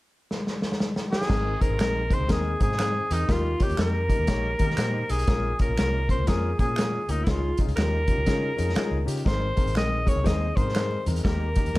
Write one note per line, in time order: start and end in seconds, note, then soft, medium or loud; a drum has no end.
0.31 snare medium
0.47 snare soft
0.62 snare medium
0.72 snare medium
0.80 snare medium
0.96 snare medium
1.12 1.63 G#4 medium
1.12 snare medium
1.22 snare medium
1.28 1.55 G#1 medium
1.28 1.50 C4 loud
1.28 1.51 D#4 medium
1.28 1.51 G#4 medium
1.28 1.51 A#4 medium
1.28 kick loud
1.28 snare loud
1.28 crash medium
1.60 1.73 C4 medium
1.60 1.73 D#4 medium
1.60 1.74 G#4 medium
1.60 1.80 A#4 medium
1.60 1.74 C5 medium
1.60 kick medium
1.60 closed hi-hat medium
1.69 1.77 G#1 medium
1.79 2.11 A#1 medium
1.79 2.01 C4 medium
1.79 2.01 D#4 medium
1.79 2.01 G#4 medium
1.79 2.01 A#4 medium
1.79 2.15 A#4 loud
1.79 finger snap medium
1.79 snare loud
1.79 closed hi-hat medium
2.10 2.23 C4 medium
2.10 2.23 D#4 medium
2.10 2.23 G#4 medium
2.10 2.23 C5 medium
2.10 2.31 C5 medium
2.10 kick medium
2.10 closed hi-hat medium
2.20 2.27 C#2 medium
2.28 2.54 D#2 medium
2.28 2.50 C4 medium
2.28 2.50 D#4 medium
2.28 2.50 G#4 medium
2.28 2.51 A#4 loud
2.28 kick medium
2.28 snare loud
2.28 closed hi-hat medium
2.32 2.60 G#4 medium
2.60 3.00 G#2 medium
2.60 2.73 C4 medium
2.60 2.73 D#4 medium
2.60 2.73 G#4 medium
2.60 3.15 G#4 medium
2.60 2.73 C5 medium
2.60 kick medium
2.60 closed hi-hat medium
2.72 snare soft
2.79 3.00 C4 medium
2.79 3.01 D#4 medium
2.79 3.01 G#4 medium
2.79 3.01 C5 medium
2.79 finger snap loud
2.79 snare medium
2.79 closed hi-hat medium
3.10 3.25 E2 medium
3.10 3.23 C4 medium
3.10 3.23 D#4 soft
3.10 3.33 D#4 medium
3.10 3.23 G#4 medium
3.10 3.23 A#4 medium
3.10 closed hi-hat medium
3.28 3.53 D#2 medium
3.28 3.50 A#3 medium
3.28 3.50 D#4 medium
3.28 3.64 F4 medium
3.28 3.50 G4 medium
3.28 3.51 A#4 medium
3.28 kick loud
3.28 snare medium
3.28 closed hi-hat medium
3.59 3.72 A#3 medium
3.59 3.72 D#4 medium
3.59 3.73 G4 medium
3.59 3.80 G4 medium
3.59 3.73 C#5 medium
3.59 kick medium
3.59 closed hi-hat medium
3.69 3.77 D#2 medium
3.69 closed hi-hat soft
3.76 4.10 F2 medium
3.76 3.99 A#3 medium
3.76 3.99 D#4 medium
3.76 4.00 G4 medium
3.76 4.00 A#4 medium
3.76 finger snap medium
3.76 snare loud
3.76 closed hi-hat medium
3.81 5.12 A#4 loud
4.08 4.22 A#3 medium
4.08 4.22 D#4 medium
4.08 4.22 G4 medium
4.08 4.22 A#4 medium
4.08 kick medium
4.08 closed hi-hat medium
4.19 4.27 D#2 medium
4.27 4.53 A#1 medium
4.27 4.49 A#3 medium
4.27 4.49 D#4 medium
4.27 4.49 G4 medium
4.27 4.50 C#5 loud
4.27 kick medium
4.27 snare loud
4.27 closed hi-hat medium
4.59 4.74 D#3 medium
4.59 4.72 A#3 medium
4.59 4.72 D#4 medium
4.59 4.72 G4 medium
4.59 4.72 A#4 medium
4.59 kick medium
4.59 closed hi-hat medium
4.70 snare soft
4.77 5.02 A#2 medium
4.77 4.99 A#3 medium
4.77 4.99 D#4 medium
4.77 5.00 G4 medium
4.77 5.00 C5 medium
4.77 finger snap medium
4.77 snare medium
4.77 closed hi-hat medium
5.09 5.24 B1 medium
5.09 5.22 A#3 medium
5.09 5.22 D#4 medium
5.09 5.22 G4 medium
5.09 5.60 G#4 medium
5.09 5.22 A#4 medium
5.09 closed hi-hat medium
5.19 closed hi-hat soft
5.27 5.53 A#1 medium
5.27 5.49 A#3 medium
5.27 5.49 C#4 medium
5.27 5.49 F4 medium
5.27 5.50 A#4 medium
5.27 kick loud
5.27 snare loud
5.27 closed hi-hat medium
5.59 5.72 A#3 medium
5.59 5.72 C#4 medium
5.59 5.73 F4 medium
5.59 5.77 A#4 medium
5.59 5.73 C#5 medium
5.59 kick medium
5.59 closed hi-hat medium
5.69 5.76 A#1 medium
5.77 6.10 C2 medium
5.77 5.99 A#3 medium
5.77 5.99 C#4 medium
5.77 5.99 F4 medium
5.77 6.00 A#4 medium
5.77 6.08 A#4 loud
5.77 finger snap medium
5.77 snare loud
5.77 closed hi-hat medium
6.09 6.21 A#3 medium
6.09 6.22 C#4 medium
6.09 6.22 F4 medium
6.09 6.22 A#4 medium
6.09 6.30 C5 medium
6.09 kick medium
6.09 closed hi-hat medium
6.18 6.26 C#2 medium
6.27 6.52 F2 medium
6.27 6.48 A#3 medium
6.27 6.49 C#4 medium
6.27 6.49 F4 medium
6.27 6.59 G#4 medium
6.27 6.49 A#4 loud
6.27 kick medium
6.27 snare loud
6.27 closed hi-hat medium
6.59 6.98 A#2 medium
6.59 6.71 A#3 medium
6.59 6.71 C#4 medium
6.59 6.71 F4 medium
6.59 7.13 G#4 medium
6.59 6.72 A#4 medium
6.59 kick medium
6.59 closed hi-hat medium
6.76 6.99 A#3 medium
6.76 6.99 C#4 medium
6.76 6.99 F4 medium
6.76 7.00 A#4 medium
6.76 finger snap loud
6.76 snare loud
6.76 closed hi-hat medium
7.08 7.23 D2 medium
7.08 7.21 A#3 medium
7.08 7.21 C#4 soft
7.08 7.26 D#4 medium
7.08 7.21 F4 medium
7.08 7.21 A#4 medium
7.08 closed hi-hat medium
7.24 7.52 C#2 loud
7.24 7.48 C#4 medium
7.24 7.48 D#4 medium
7.24 7.31 E4 medium
7.24 7.48 F4 medium
7.24 7.49 G#4 medium
7.24 kick loud
7.24 snare loud
7.24 closed hi-hat medium
7.30 7.60 F4 medium
7.57 7.71 C#4 medium
7.57 7.71 D#4 medium
7.57 7.71 F4 medium
7.57 7.72 G#4 medium
7.57 kick medium
7.57 closed hi-hat medium
7.67 7.75 C#2 medium
7.67 closed hi-hat soft
7.76 8.09 D#2 medium
7.76 7.98 C#4 medium
7.76 7.98 D#4 medium
7.76 7.99 F4 medium
7.76 7.99 G4 medium
7.76 9.04 A#4 loud
7.76 finger snap medium
7.76 snare loud
7.76 closed hi-hat medium
8.08 8.20 C#4 medium
8.08 8.21 D#4 medium
8.08 8.21 F4 medium
8.08 8.21 G4 medium
8.08 kick medium
8.08 closed hi-hat medium
8.18 8.25 C#2 medium
8.26 8.52 C#3 medium
8.26 8.48 C#4 medium
8.26 8.48 D#4 medium
8.26 8.48 F4 medium
8.26 8.48 G#4 loud
8.26 kick medium
8.26 snare loud
8.26 closed hi-hat medium
8.57 8.73 F2 medium
8.57 8.70 C#4 medium
8.57 8.70 D#4 medium
8.57 8.70 F4 medium
8.57 8.71 G#4 medium
8.57 closed hi-hat medium
8.69 snare soft
8.74 8.96 C#4 medium
8.74 8.97 D#4 medium
8.74 8.97 F4 medium
8.74 8.97 G#4 medium
8.74 finger snap loud
8.74 muted fingered electric bass stroke soft
8.74 snare loud
8.74 closed hi-hat medium
8.91 9.04 C#2 medium
9.05 9.22 C#3 medium
9.05 9.19 C#4 medium
9.05 9.19 D#4 medium
9.05 9.19 F4 medium
9.05 9.20 G4 medium
9.05 closed hi-hat medium
9.17 closed hi-hat soft
9.24 9.51 G#1 loud
9.24 9.47 C4 medium
9.24 9.47 D#4 medium
9.24 9.47 G#4 medium
9.24 9.47 A#4 medium
9.24 9.73 C5 medium
9.24 kick loud
9.24 snare loud
9.24 closed hi-hat medium
9.24 muted conga soft
9.42 muted conga soft
9.55 9.69 C4 medium
9.55 9.69 D#4 medium
9.55 9.69 G#4 medium
9.55 9.69 A#4 medium
9.55 kick medium
9.55 closed hi-hat medium
9.55 high conga medium
9.66 9.75 G#1 medium
9.66 closed hi-hat soft
9.75 10.07 A#1 medium
9.75 9.97 C4 medium
9.75 9.97 D#4 medium
9.75 9.97 G#4 medium
9.75 9.97 A#4 medium
9.75 10.10 D#5 loud
9.75 finger snap medium
9.75 snare loud
9.75 closed hi-hat medium
9.75 muted conga soft
10.05 10.19 C4 medium
10.05 10.19 D#4 medium
10.05 10.19 G#4 medium
10.05 10.19 A#4 medium
10.05 10.28 C#5 loud
10.05 kick medium
10.05 closed hi-hat medium
10.05 high conga medium
10.05 low conga medium
10.16 10.23 C#2 medium
10.23 10.50 D#2 medium
10.23 10.46 C4 medium
10.23 10.46 D#4 medium
10.23 10.46 G#4 medium
10.23 10.46 C5 loud
10.23 10.58 D#5 medium
10.23 kick medium
10.23 snare loud
10.23 closed hi-hat medium
10.23 muted conga soft
10.23 high conga medium
10.23 low conga medium
10.56 10.96 G#2 medium
10.56 10.69 C4 medium
10.56 10.69 D#4 medium
10.56 10.70 G#4 medium
10.56 10.70 A#4 medium
10.56 11.07 C5 medium
10.56 kick medium
10.56 closed hi-hat medium
10.67 snare soft
10.67 high conga medium
10.74 10.96 C4 medium
10.74 10.96 D#4 medium
10.74 10.97 G#4 medium
10.74 10.97 A#4 medium
10.74 finger snap loud
10.74 snare loud
10.74 closed hi-hat medium
10.91 muted conga soft
11.06 11.21 E2 medium
11.06 11.19 C4 medium
11.06 11.19 D#4 medium
11.06 11.19 G#4 medium
11.06 11.20 A#4 medium
11.06 closed hi-hat medium
11.06 high conga medium
11.06 low conga medium
11.16 closed hi-hat soft
11.24 11.57 D#2 medium
11.24 11.46 A#3 medium
11.24 11.46 D#4 medium
11.24 11.46 G4 medium
11.24 11.79 A#4 medium
11.24 11.46 A#4 medium
11.24 kick loud
11.24 snare loud
11.24 closed hi-hat medium
11.42 muted conga soft
11.55 11.68 A#3 medium
11.55 11.69 D#4 medium
11.55 11.69 G4 medium
11.55 11.69 A#4 medium
11.55 kick medium
11.55 closed hi-hat medium
11.55 high conga medium
11.65 11.73 D#2 medium
11.65 closed hi-hat soft
11.73 11.79 F2 loud
11.73 11.79 A#3 medium
11.73 11.79 D#4 medium
11.73 11.79 G4 medium
11.73 11.79 A#4 medium
11.73 finger snap medium
11.73 closed hi-hat medium